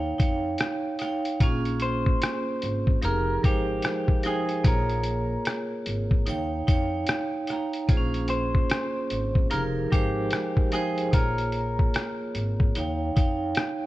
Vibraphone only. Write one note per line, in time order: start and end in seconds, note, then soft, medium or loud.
0.00 0.17 D#4 medium
0.00 0.17 C#5 medium
0.00 0.18 F5 medium
0.00 0.18 G5 medium
0.18 0.96 D#4 medium
0.18 0.97 C#5 medium
0.18 0.97 F5 medium
0.18 0.97 G5 medium
0.99 1.38 D#4 medium
0.99 1.39 C#5 medium
0.99 1.39 F5 medium
0.99 1.40 G5 medium
1.40 2.95 A#3 medium
1.40 2.97 C#4 medium
1.40 2.96 F4 medium
1.40 2.96 G#4 medium
3.02 3.41 F3 medium
3.02 3.41 D#4 medium
3.02 3.41 G4 medium
3.02 3.42 G#4 medium
3.02 3.42 A#4 medium
3.43 4.21 F3 medium
3.43 4.22 G#3 medium
3.43 4.21 D#4 medium
3.43 4.21 G4 medium
3.43 4.22 C5 medium
4.24 4.63 F3 medium
4.24 4.63 D#4 medium
4.24 4.64 G#4 medium
4.24 4.64 C5 medium
4.24 4.63 G5 medium
4.63 6.19 A#3 medium
4.63 6.20 F4 medium
4.63 6.20 G#4 medium
4.63 6.21 C#5 medium
6.26 6.65 D#4 medium
6.26 6.65 C#5 medium
6.26 6.66 F5 medium
6.26 6.66 G5 medium
6.67 7.45 D#4 medium
6.67 7.45 C#5 medium
6.67 7.46 F5 medium
6.67 7.46 G5 medium
7.48 7.87 D#4 medium
7.48 7.87 C#5 medium
7.48 7.88 F5 medium
7.48 7.88 A#5 medium
7.88 9.43 A#3 medium
7.88 9.44 F4 medium
7.88 9.44 G#4 medium
7.88 7.98 C5 medium
7.97 9.48 C#4 medium
9.50 9.89 F3 medium
9.50 9.90 D#4 medium
9.50 9.90 G4 medium
9.50 9.90 G#4 medium
9.50 9.91 A#4 medium
9.91 10.69 F3 medium
9.91 10.70 G#3 medium
9.91 10.69 D#4 medium
9.91 10.70 G4 medium
9.91 10.70 C5 medium
10.72 11.11 F3 medium
10.72 11.11 D#4 medium
10.72 11.12 G#4 medium
10.72 11.13 C5 loud
10.72 11.12 G5 medium
11.12 12.68 A#3 medium
11.12 12.68 F4 medium
11.12 12.69 G#4 medium
11.12 12.69 C#5 medium
12.76 13.14 D#4 medium
12.76 13.15 C#5 medium
12.76 13.15 F5 medium
12.76 13.16 G5 medium
13.16 13.86 D#4 medium
13.16 13.86 C#5 medium
13.16 13.86 F5 medium
13.16 13.86 G5 medium